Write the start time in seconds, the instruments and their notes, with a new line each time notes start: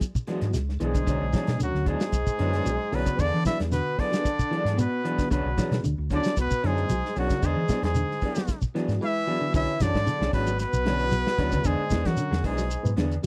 Already playing: clean electric guitar F#3
0.01 kick, closed hi-hat, shekere
0.15 kick, shekere
0.27 clean electric guitar E3 G#3 B3 D4 G#4, reed electric piano F#3 B3 E4 F#4, snare, closed hi-hat
0.41 fingered electric bass G#2, snare, closed hi-hat, shekere
0.54 fingered electric bass C#2, clean electric guitar G#3, snare, closed hi-hat, shekere
0.69 snare
0.80 fingered electric bass B1, baritone saxophone G#2, clean electric guitar E3 G#3 B3 D4 G#4, reed electric piano F#3 B3 E4 G#4, closed hi-hat, shekere
0.84 trombone G#3, trumpet G#4
0.95 clean electric guitar D3, kick, closed hi-hat, shekere
1.06 fingered electric bass B1, clean electric guitar D3 F#3 C#4 D4 G#4, kick, closed hi-hat, shekere
1.21 fingered electric bass B1
1.32 clean electric guitar E3 F#3 C#4 D4 G#4, reed electric piano F#3 B3 E4 G#4, kick, snare, closed hi-hat, shekere
1.47 fingered electric bass B2, snare, closed hi-hat, shekere
1.59 fingered electric bass D2, baritone saxophone F#2, clean electric guitar D3, trombone F#3, trumpet F#4, closed hi-hat, shekere
1.75 fingered electric bass D2, snare
1.85 baritone saxophone G#2, reed electric piano F#3 B3 E4 G#4, clean electric guitar F#3 D4 G#4, trombone G#3, trumpet G#4, muted clean electric guitar stroke, kick, closed hi-hat, shekere
2.00 clean electric guitar F#3, snare, closed hi-hat, shekere
2.12 fingered electric bass B1, kick, closed hi-hat, shekere
2.27 kick, shekere
2.38 fingered electric bass F#2, clean electric guitar D3 F#3 C#4 D4 G#4, reed electric piano F#3 B3 E4 B4, snare, closed hi-hat
2.53 clean electric guitar C#4 D4 G#4, snare, closed hi-hat, shekere
2.66 fingered electric bass B1, clean electric guitar F#3, closed hi-hat, shekere
2.91 fingered electric bass B1, baritone saxophone B2, clean electric guitar D3 F#3 C#4 D4 G#4, reed electric piano F#3 B3 E4 G#4, trombone B3, trumpet B4, open hi-hat, shekere
3.06 clean electric guitar C#3, kick, closed hi-hat, shekere
3.19 fingered electric bass E2, clean electric guitar D3 B3 D4 G#4, baritone saxophone D3, trombone D4, trumpet D5, kick, closed hi-hat, shekere
3.34 fingered electric bass E3
3.44 clean electric guitar E3 B3 D4 G#4, baritone saxophone E3, reed electric piano F#3 B3 E4 G#4, trombone E4, trumpet E5, kick, snare, closed hi-hat, shekere
3.59 fingered electric bass E2, snare, closed hi-hat, shekere
3.72 baritone saxophone B2, clean electric guitar D3, trombone B3, trumpet B4, snare, closed hi-hat, shekere
3.98 baritone saxophone D3, reed electric piano F#3 B3 E4 B4, clean electric guitar B3 D4 G#4, trombone D4, trumpet D5, kick, open hi-hat, shekere
4.12 clean electric guitar F#3 D4 G#4, snare, closed hi-hat, shekere
4.25 kick, closed hi-hat, shekere
4.39 kick, shekere
4.51 clean electric guitar E3 B3 D4 G#4, reed electric piano F#3 B3 E4 G#4, closed hi-hat
4.65 fingered electric bass G#2, clean electric guitar D4 G#4, snare, closed hi-hat, shekere
4.78 baritone saxophone B2, clean electric guitar B3, trombone B3, trumpet B4, closed hi-hat, shekere
5.04 clean electric guitar E3 B3 D4 G#4, reed electric piano F#3 B3 E4 G#4, closed hi-hat, shekere
5.19 clean electric guitar D3, kick, snare, closed hi-hat, shekere
5.30 fingered electric bass B1, baritone saxophone B2, clean electric guitar D3 F#3 C#4 D4 G#4, trombone B3, trumpet B4, kick, closed hi-hat, shekere
5.45 fingered electric bass B1
5.58 clean electric guitar E3 F#3 C#4 D4 G#4, reed electric piano F#3 B3 E4 G#4, kick, snare, closed hi-hat, shekere
5.71 fingered electric bass B2, snare, closed hi-hat, shekere
5.83 fingered electric bass D2, clean electric guitar D3, closed hi-hat, shekere
5.98 fingered electric bass D2
6.10 baritone saxophone D3, clean electric guitar F#3 C#4 D4 G#4, reed electric piano F#3 B3 E4 G#4, trombone D4, trumpet D5, kick, closed hi-hat, shekere
6.24 clean electric guitar F#3, snare, closed hi-hat, shekere
6.37 fingered electric bass B1, baritone saxophone B2, trombone B3, kick, closed hi-hat, shekere
6.41 trumpet B4
6.51 kick, shekere
6.63 fingered electric bass F#2, baritone saxophone G#2, clean electric guitar D3 F#3 C#4 D4 G#4, reed electric piano F#3 B3 E4 G#4, trombone G#3, trumpet G#4, snare, closed hi-hat
6.77 closed hi-hat, shekere
6.89 fingered electric bass B1, clean electric guitar F#3, closed hi-hat, shekere
7.05 snare
7.16 fingered electric bass B1, baritone saxophone F#2, clean electric guitar F#3 C#4 D4 G#4, reed electric piano F#3 B3 E4 G#4, trombone F#3, trumpet F#4, open hi-hat, shekere
7.30 clean electric guitar C#3, kick, snare, closed hi-hat, shekere
7.42 fingered electric bass E2, baritone saxophone G#2, clean electric guitar D3 B3 D4 G#4, trombone G#3, trumpet G#4, kick, closed hi-hat, shekere
7.56 fingered electric bass E3
7.69 reed electric piano F#3 B3 E4 G#4, clean electric guitar B3 D4 G#4, kick, snare, closed hi-hat, shekere
7.82 fingered electric bass E2, baritone saxophone G#2, trombone G#3, trumpet G#4, snare, closed hi-hat, shekere
7.95 clean electric guitar D3, closed hi-hat, shekere
8.11 snare
8.22 reed electric piano F#3 B3 E4 G#4, clean electric guitar B3 D4 G#4, kick, open hi-hat, shekere
8.35 clean electric guitar F#3, snare, closed hi-hat, shekere
8.48 kick, snare, closed hi-hat, shekere
8.62 kick, shekere
8.75 clean electric guitar E3 B3 D4 G#4, reed electric piano F#3 B3 E4 F#4, snare, closed hi-hat
8.88 fingered electric bass G#2, snare, closed hi-hat, shekere
9.01 baritone saxophone E3, clean electric guitar G#3, trombone E4, trumpet E5
9.27 clean electric guitar E3 B3 D4 G#4, reed electric piano F#3 B3 E4 F#4
9.41 clean electric guitar D3
9.54 fingered electric bass B1, clean electric guitar D3 F#3 C#4 G#4, baritone saxophone E3, trombone E4, trumpet E5, muted clean electric guitar stroke, kick, closed hi-hat, shekere
9.80 fingered electric bass F#2, baritone saxophone D3, clean electric guitar E3 F#3 C#4 D4 G#4, trombone D4, trumpet D5, kick, snare, closed hi-hat, shekere
9.94 fingered electric bass G#2, kick, snare, shekere
10.06 clean electric guitar D3, reed electric piano F#3 B3 E4 G#4, closed hi-hat, shekere
10.21 fingered electric bass B1, clean electric guitar C#4 D4 G#4, snare
10.33 fingered electric bass G#1, baritone saxophone B2, clean electric guitar F#3 C#4 D4 G#4, trombone B3, trumpet B4, kick, open hi-hat, shekere
10.47 clean electric guitar F#3, closed hi-hat, shekere
10.59 baritone saxophone B2, trombone B3, trumpet B4, snare, closed hi-hat, shekere
10.73 fingered electric bass B1, shekere
10.85 clean electric guitar D3 F#3 C#4 D4 G#4, reed electric piano F#3 B3 E4 B4, snare, closed hi-hat
10.99 reed electric piano F#3 B3 E4 G#4, closed hi-hat, shekere
11.12 clean electric guitar F#3, closed hi-hat, shekere
11.27 snare
11.38 fingered electric bass D2, clean electric guitar D3 F#3 C#4 D4 G#4, reed electric piano F#3 B3 E4 G#4, kick, snare, closed hi-hat, shekere
11.52 clean electric guitar C#3, kick, closed hi-hat, shekere
11.64 fingered electric bass E2, baritone saxophone G#2, clean electric guitar D3 B3 D4 G#4, trombone G#3, trumpet G#4, kick, closed hi-hat, shekere
11.79 muted fingered electric bass stroke
11.90 fingered electric bass E2, clean electric guitar E3 B3 D4 G#4, kick, snare, closed hi-hat, shekere
12.05 baritone saxophone F#2, fingered electric bass E3, trombone F#3, trumpet F#4, kick, snare, closed hi-hat, shekere
12.17 clean electric guitar D3, closed hi-hat, shekere
12.31 fingered electric bass E2, clean electric guitar G#4, muted clean electric guitar stroke, snare
12.43 fingered electric bass B1, baritone saxophone G#2, reed electric piano F#3 B3 E4 G#4, trombone G#3, clean electric guitar B3 D4 G#4, trumpet G#4, kick, open hi-hat, shekere
12.58 clean electric guitar F#3, snare, shekere
12.71 closed hi-hat, shekere
12.83 fingered electric bass G#2, reed electric piano F#3 B3 E4 B4, shekere
12.97 fingered electric bass E2, clean electric guitar D3 B3 D4 G#4, snare, closed hi-hat
13.11 closed hi-hat, shekere
13.23 reed electric piano F#3 B3 E4